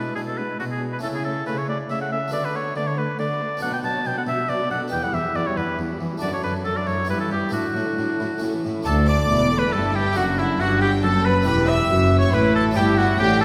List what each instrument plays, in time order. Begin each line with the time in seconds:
Already playing: cello section B2, harpsichord G#3 D4 E4, violin section D4, oboe B4
0.15 cello section B2, harpsichord B2, viola section G#3, violin section B3 D4, oboe G#4
0.27 violin section C#4, oboe A4
0.38 viola section G#3, violin section D4, oboe B4
0.60 cello section B2, harpsichord B2, viola section G#3, violin section A3 D4, oboe F#4
0.70 violin section B3, oboe G#4
0.81 viola section G#3, violin section D4
0.92 violin section D4, oboe B4
0.99 harpsichord A3 C#4 E4, violin section C#4
1.03 cello section C#3, harpsichord C#3, viola section A3, oboe A4
1.14 violin section B3, oboe G#4
1.25 viola section A3, violin section C#4, oboe A4
1.46 harpsichord C#3, cello section C#3, viola section A3, violin section C#4 D4, oboe B4
1.57 violin section E4, oboe C#5
1.68 viola section A3, violin section C#4 F#4, oboe D5
1.89 harpsichord C#3, cello section C#3, viola section A3, violin section C#4 A4, oboe E5
2.00 violin section A4, oboe F#5
2.11 viola section A3, violin section C#4 G#4, oboe E5
2.28 harpsichord A3 B3 F#4
2.32 harpsichord D3, cello section D3, viola section A3, violin section B3 F#4, oboe D5
2.43 violin section D4, oboe B4
2.53 viola section A3, violin section B3 E4, oboe C#5
2.75 harpsichord D3, cello section D3, viola section A3, violin section B3 F#4, oboe D5
2.86 violin section E4, oboe C#5
2.97 viola section A3, violin section B3 D4, oboe B4
3.19 harpsichord D3, cello section D3, viola section A3, violin section B3 F#4, oboe D5
3.40 viola section A3, violin section B3
3.57 harpsichord B3 D4 F#4
3.61 harpsichord B2, cello section B2, viola section F#3, violin section D4 B4, oboe F#5
3.72 viola section B3, violin section F#4 B4, oboe G5
3.83 harpsichord B2, cello section B2, viola section F#3, violin section D4 C#5, oboe A5
3.94 viola section B3, violin section F#4
4.05 harpsichord B2, cello section B2, viola section F#3, violin section D4 B4, oboe G5
4.15 viola section B3, violin section F#4 A4, oboe F#5
4.26 harpsichord B2, cello section B2, viola section F#3, violin section D4 G4, oboe E5
4.37 viola section B3, violin section F#4
4.48 harpsichord B2, cello section B2, viola section F#3, violin section D4 F#4, oboe D5
4.59 viola section B3, violin section F#4
4.70 cello section B2, harpsichord B2, viola section F#3, violin section D4 A4, oboe F#5
4.81 viola section B3, violin section F#4
4.88 harpsichord B3 G4, violin section B4
4.92 cello section E2, harpsichord E2, viola section E3, violin section B3, oboe G5
5.02 viola section G3, violin section E4 A4, oboe F#5
5.13 cello section E2, harpsichord E2, viola section E3, violin section B3 G4, oboe E5
5.25 viola section G3, violin section E4
5.34 cello section E2, harpsichord E2, viola section E3, violin section B3 F#4, oboe D5
5.46 viola section G3, violin section E4, oboe C#5
5.56 cello section E2, harpsichord E2, viola section E3, violin section B3 D4, oboe B4
5.68 viola section G3, violin section E4
5.79 cello section E2, harpsichord E2, viola section E3, violin section B3
5.90 viola section G3, violin section E4
6.00 cello section E2, harpsichord E2, viola section E3, violin section B3
6.11 viola section G3, violin section E4
6.18 harpsichord A3 D4 F#4, violin section F#4
6.22 cello section F#2, harpsichord F#2, viola section D3, violin section A3, oboe D5
6.32 viola section F#3, violin section D4 E4, oboe C#5
6.43 cello section F#2, harpsichord F#2, viola section D3, violin section A3 D4, oboe B4
6.54 viola section F#3, violin section D4
6.64 cello section F#2, harpsichord F#2, viola section D3, violin section A3 D4, oboe A4
6.75 viola section F#3, violin section D4 F#4, oboe D5
6.87 cello section F#2, harpsichord F#2, viola section D3, violin section A3 E4, oboe C#5
6.98 viola section F#3, violin section D4
7.05 cello section G2, harpsichord B3 E4, violin section E4
7.09 harpsichord G2, viola section G3, violin section B3, oboe B4
7.19 viola section E3, violin section C#4 E4, oboe A4
7.30 cello section G2, harpsichord G2, viola section G3, violin section B3, oboe G4
7.42 viola section E3, violin section E4
7.49 cello section A2, harpsichord A3 D4 F#4, violin section A3 D4
7.53 harpsichord A2, viola section F#3, oboe F#4
7.64 viola section D3, violin section F#4
7.75 cello section A2, harpsichord A2, viola section F#3, violin section D4
7.86 viola section D3, violin section F#4
7.97 cello section A2, harpsichord A2, viola section F#3, violin section D4
8.09 viola section D3
8.19 cello section A2, harpsichord A2, viola section F#3, violin section E4
8.32 viola section D3
8.38 harpsichord A3 C#4 E4, violin section F#4
8.42 cello section A2, harpsichord A2, viola section A3
8.54 viola section E3
8.64 cello section A2, harpsichord A2, viola section A3, violin section E4
8.76 viola section E3
8.82 cello section D2, harpsichord A3 D4 F#4, violin section A4 A5
8.87 double bass section D2, harpsichord D2, viola section D4, oboe A4
9.08 violin section D5 D6, oboe D5
9.30 double bass section E1, cello section E2, harpsichord E2, viola section B3
9.52 viola section A3
9.59 oboe B4, violin section B4 B5
9.73 double bass section G1, harpsichord G2, cello section G2, viola section E4, oboe A4, violin section A4 A5
9.95 violin section G4 G5, oboe G4
10.12 harpsichord A3 D4 F#4
10.16 double bass section F#1, harpsichord F#2, cello section F#2, viola section D4, violin section F#4 F#5, oboe F#4
10.38 oboe E4, violin section E4 E5
10.59 double bass section G1, cello section G2, harpsichord G2, viola section D4, violin section F#4 F#5, oboe F#4
10.81 oboe G4, violin section G4 G5
11.03 double bass section F#1, harpsichord F#2, cello section F#2, viola section F#4, violin section A4 A5, oboe A4
11.25 oboe B4, violin section B4 B5
11.42 harpsichord B3 E4 G4
11.46 double bass section E1, harpsichord E2, cello section E2, viola section G4, violin section B4 B5, oboe B4
11.68 violin section E5 E6, oboe E5
11.90 double bass section F#1, harpsichord F#2, cello section F#2, viola section F#4
12.19 oboe C#5, violin section C#5 C#6
12.33 double bass section A1, harpsichord A2, cello section A2, viola section E4, violin section B4 B5, oboe B4
12.55 oboe A4, violin section A4 A5
12.71 harpsichord B3 E4 G4
12.76 double bass section G1, harpsichord G2, cello section G2, viola section E4, violin section G4 G5, oboe G4
12.98 oboe F#4, violin section F#4 F#5
13.19 double bass section A1, harpsichord A2, cello section A2, viola section D4, oboe G4, violin section G4 G5
13.41 violin section A4 A5, oboe A4